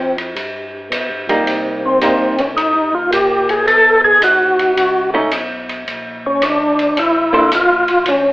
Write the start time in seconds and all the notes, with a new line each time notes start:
Already playing: F2 C4
0.18 ride
0.35 G2, ride
0.90 B2, hi-hat pedal, ride
1.09 G2
1.27 F2 G3 A#3 D#4, ride
1.45 C3, ride
1.86 C4
2.00 G2 G3 A#3 D#4, hi-hat pedal, ride
2.19 D#2
2.36 C2 C#4, ride
2.54 A2 D#4, ride
2.73 G2
2.92 D#2 F4
3.11 A#2 G4, hi-hat pedal, ride
3.49 G#4, ride
3.65 B2 A4, ride
4.04 G#4
4.20 D#2 F#4, hi-hat pedal, ride
4.59 ride
4.75 C#2, ride
5.14 A3 C#4 D#4
5.31 B1, hi-hat pedal, ride
5.69 ride
5.88 A#1, ride
6.26 C#4
6.40 D2 D4, hi-hat pedal, ride
6.79 ride
6.95 A1, ride
6.99 E4
7.33 A#3 D4 A4 C5
7.37 E4
7.48 C2 E4, hi-hat pedal, ride
7.55 F4
7.69 A#1
7.88 A1, ride
8.05 D2 C#4, ride